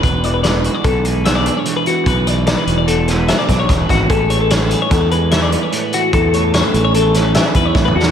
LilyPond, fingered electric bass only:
\new Staff \with { instrumentName = "Fingered electric bass" } { \clef bass \time 5/4 \key e \mixolydian \tempo 4 = 148 e,,2 b,,2 r4 | b,,4. e,,2 b,,8 e,,8 gis,,8 | a,,2 e,2 r4 | e,4. a,,2 e,8 a,,8 e,8 | }